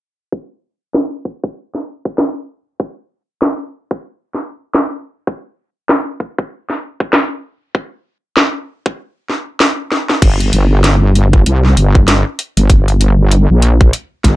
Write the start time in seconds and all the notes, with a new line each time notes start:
0.32 kick
0.94 snare
1.25 kick
1.44 kick
1.75 snare
2.05 kick
2.18 snare
2.80 kick
3.42 snare
3.91 kick
4.35 snare
4.75 snare
5.27 kick
5.89 snare
6.20 kick
6.38 kick
6.70 snare
7.00 kick
7.13 snare
7.75 kick
8.37 snare
8.86 kick
9.30 snare
9.60 snare
9.92 snare
10.10 snare
10.22 G1, kick, closed hi-hat, crash
10.40 closed hi-hat
10.53 G1, closed hi-hat
10.84 snare, closed hi-hat
11.15 closed hi-hat
11.33 kick
11.46 C2, closed hi-hat
11.65 snare
11.77 G1, closed hi-hat
11.95 kick
12.08 snare, closed hi-hat
12.39 closed hi-hat
12.57 G1, closed hi-hat
12.70 kick, closed hi-hat
12.88 closed hi-hat
13.01 closed hi-hat
13.31 closed hi-hat
13.50 A#1
13.62 closed hi-hat
13.81 kick
13.93 closed hi-hat
14.24 G1, kick, snare, closed hi-hat